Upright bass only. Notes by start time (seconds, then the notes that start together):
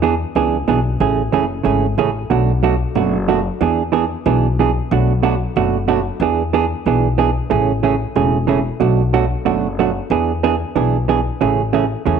Already playing: E2
0.35 C#2
0.68 B1
1.00 A1
1.33 F#1
1.65 G#1
1.98 A1
2.30 B1
2.95 F#1
3.61 E2
4.26 B1
4.91 B1
5.56 F#1
6.20 E2
6.86 B1
7.51 A1
8.15 E1
8.80 B1
9.46 F#1
10.10 E2
10.76 B1
11.41 A1
12.06 E2